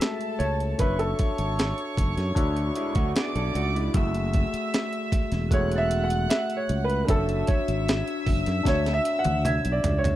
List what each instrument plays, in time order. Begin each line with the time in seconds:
Already playing: tine electric piano G#3 A3 F#4 A4 E5, grand piano E5
0.00 violin section A4 A5, snare, closed hi-hat
0.21 closed hi-hat
0.39 fingered electric bass C#2, grand piano C#5, closed hi-hat
0.60 closed hi-hat
0.78 fingered electric bass F#1, tine electric piano D4 F#4 C#5 E5, grand piano B4, violin section C#5 C#6, kick, closed hi-hat
0.99 grand piano A4, closed hi-hat
1.19 kick, closed hi-hat
1.38 fingered electric bass G#1, closed hi-hat
1.59 snare, closed hi-hat
1.78 closed hi-hat
1.97 fingered electric bass F#1, kick, closed hi-hat
2.17 fingered electric bass F#2, snare, closed hi-hat
2.35 fingered electric bass D2, tine electric piano D4 F#4 D5 E5, kick, closed hi-hat
2.56 closed hi-hat
2.75 clean electric guitar G#3 E4, closed hi-hat
2.95 fingered electric bass D2, clean electric guitar A3 F#4, kick, closed hi-hat
3.16 clean electric guitar B3 G#4, violin section D5 D6, snare, closed hi-hat
3.35 fingered electric bass B1, clean electric guitar C#4 A4, closed hi-hat
3.55 fingered electric bass C#2, clean electric guitar A3 F#4, closed hi-hat
3.75 clean electric guitar G#3 E4, closed hi-hat
3.94 fingered electric bass F#1, tine electric piano A3 F#4 G#4 E5, violin section E5 E6, celesta E6, kick, closed hi-hat
4.14 closed hi-hat
4.33 kick, closed hi-hat
4.54 muted fingered electric bass stroke, closed hi-hat
4.74 snare, closed hi-hat
4.93 closed hi-hat
5.12 muted fingered electric bass stroke, kick, closed hi-hat
5.32 fingered electric bass E1, snare, closed hi-hat
5.50 tine electric piano A3 F#4 G#4 E5, grand piano C#5, violin section F#5 F#6, celesta F#6, kick, closed hi-hat
5.71 closed hi-hat
5.76 grand piano E5, celesta A6
5.91 closed hi-hat
6.04 grand piano F#5
6.10 closed hi-hat
6.30 grand piano E5, snare, closed hi-hat
6.50 closed hi-hat
6.57 grand piano C#5
6.69 fingered electric bass C#2, closed hi-hat
6.84 grand piano B4
6.89 closed hi-hat
7.05 fingered electric bass F#1, tine electric piano D4 F#4 C#5, grand piano B4, violin section E5 E6, kick, closed hi-hat
7.09 grand piano A4, tine electric piano E5
7.29 closed hi-hat
7.47 grand piano C#5, kick, closed hi-hat
7.68 fingered electric bass G#1, closed hi-hat
7.89 snare, closed hi-hat
8.08 closed hi-hat
8.26 fingered electric bass F#1, kick, open hi-hat
8.46 fingered electric bass F#2, snare, closed hi-hat
8.63 fingered electric bass D2, tine electric piano D4 F#4 C#5 E5, kick, snare, closed hi-hat
8.68 grand piano C#5
8.86 snare, closed hi-hat
8.94 grand piano E5
9.05 closed hi-hat
9.19 grand piano F#5
9.24 fingered electric bass D2, closed hi-hat, high tom
9.45 grand piano E5, celesta G#6, closed hi-hat, mid tom
9.65 fingered electric bass B1, closed hi-hat
9.72 grand piano D5
9.84 fingered electric bass C#2, closed hi-hat, floor tom
9.98 grand piano C#5
10.04 closed hi-hat, floor tom